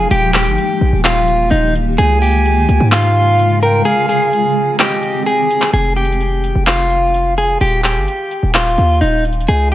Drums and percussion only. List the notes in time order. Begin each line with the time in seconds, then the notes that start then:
0.11 closed hi-hat
0.34 clap, open hi-hat
0.58 closed hi-hat
1.04 clap, closed hi-hat
1.28 closed hi-hat
1.52 closed hi-hat
1.75 closed hi-hat
1.98 closed hi-hat
2.22 open hi-hat
2.45 closed hi-hat
2.69 closed hi-hat
2.92 clap, closed hi-hat
3.39 closed hi-hat
3.63 closed hi-hat
3.86 closed hi-hat
4.09 open hi-hat
4.33 closed hi-hat
4.79 clap, closed hi-hat
5.03 closed hi-hat
5.27 closed hi-hat
5.50 closed hi-hat
5.62 clap
5.73 closed hi-hat
5.97 closed hi-hat
6.05 closed hi-hat
6.12 closed hi-hat
6.20 closed hi-hat
6.44 closed hi-hat
6.67 clap, closed hi-hat
6.75 closed hi-hat
6.83 closed hi-hat
6.90 closed hi-hat
7.14 closed hi-hat
7.38 closed hi-hat
7.61 closed hi-hat
7.84 clap, closed hi-hat
8.08 closed hi-hat
8.31 closed hi-hat
8.55 clap, closed hi-hat
8.63 closed hi-hat
8.70 closed hi-hat
8.78 closed hi-hat
9.02 closed hi-hat
9.25 closed hi-hat
9.33 closed hi-hat
9.40 closed hi-hat
9.48 closed hi-hat